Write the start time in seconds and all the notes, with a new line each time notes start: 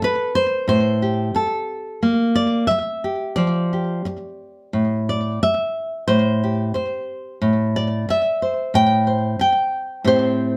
Already playing: A4
0.02 B4, muted nylon-string guitar stroke
0.35 C5
0.68 A2 C5
1.02 G4
1.34 A4, muted nylon-string guitar stroke
2.03 A#3
2.35 D5
2.67 E5, muted nylon-string guitar stroke
3.04 G4
3.36 F3 D5
3.73 G4
4.05 muted nylon-string guitar stroke
4.73 A2
5.09 D5
5.43 E5, muted nylon-string guitar stroke
6.08 A2 C5
6.44 G4
6.74 C5, muted nylon-string guitar stroke
7.42 A2
7.76 D5
8.09 E5, muted nylon-string guitar stroke
8.42 C5
8.74 A2 G5
9.07 C5
9.39 G5, muted nylon-string guitar stroke
10.04 A2 C4 G4 C5